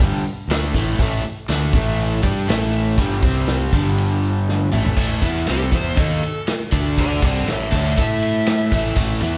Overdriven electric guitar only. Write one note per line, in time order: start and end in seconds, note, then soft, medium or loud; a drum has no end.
0.00 0.24 G2 loud
0.00 0.24 D3 medium
0.00 0.24 G3 medium
0.50 0.74 D3 loud
0.50 0.74 A3 loud
0.50 0.74 D4 loud
0.75 0.99 A2 medium
0.75 0.99 E3 medium
0.75 0.99 A3 medium
1.00 1.23 A2 medium
1.00 1.24 E3 loud
1.00 1.24 A3 loud
1.25 muted overdriven electric guitar stroke medium
1.49 1.73 D3 loud
1.49 1.73 A3 loud
1.49 1.73 D4 loud
1.75 2.23 A2 medium
1.75 2.22 E3 medium
1.75 2.23 A3 medium
2.23 2.47 G3 loud
2.23 2.48 D4 loud
2.23 2.47 G4 medium
2.47 2.97 A2 loud
2.47 2.97 E3 loud
2.47 2.98 A3 loud
2.97 3.22 G2 loud
2.97 3.22 D3 loud
2.97 3.22 G3 loud
3.22 3.72 C3 medium
3.22 3.72 G3 medium
3.22 3.72 C4 medium
3.73 4.72 G2 medium
3.73 4.71 D3 medium
3.73 4.72 G3 medium
4.72 4.95 A2 medium
4.72 4.95 E3 medium
4.72 4.96 A3 loud
4.96 5.21 A2 medium
4.96 5.21 E3 medium
4.96 5.22 A3 loud
5.22 5.46 E3 medium
5.22 5.47 B3 medium
5.22 5.47 E4 medium
5.47 5.71 C3 loud
5.47 5.71 G3 medium
5.47 5.72 C4 loud
5.71 5.96 E3 medium
5.71 5.96 B3 medium
5.71 5.97 E4 medium
5.97 6.21 D#3 medium
5.97 6.21 A#3 medium
5.97 6.22 D#4 medium
6.72 7.22 D3 medium
6.72 7.22 A3 medium
6.72 7.22 D4 medium
7.22 7.47 C3 medium
7.22 7.47 G3 medium
7.22 7.47 C4 medium
7.49 7.68 A2 medium
7.49 7.68 E3 medium
7.71 7.96 D3 medium
7.71 7.96 A3 medium
7.71 7.96 D4 medium
7.97 8.71 A3 medium
7.97 8.72 E4 medium
7.97 8.72 A4 medium
8.72 8.95 A2 medium
8.72 8.96 E3 medium
8.72 8.96 A3 medium
8.97 9.21 A2 medium
8.97 9.21 E3 medium
8.97 9.22 A3 loud
9.22 9.38 E3 medium
9.22 9.38 B3 medium
9.22 9.38 E4 medium